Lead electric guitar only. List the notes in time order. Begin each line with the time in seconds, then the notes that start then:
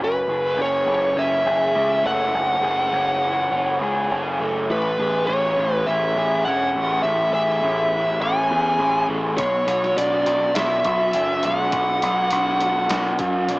0.04 B4
0.61 C#5
1.18 E5
2.07 F#5
4.71 B4
5.27 C#5
5.74 B4
5.87 E5
6.45 F#5
7.03 E5
7.34 E5
8.22 G#5
9.38 C#5
9.98 D5
10.56 E5
11.45 F#5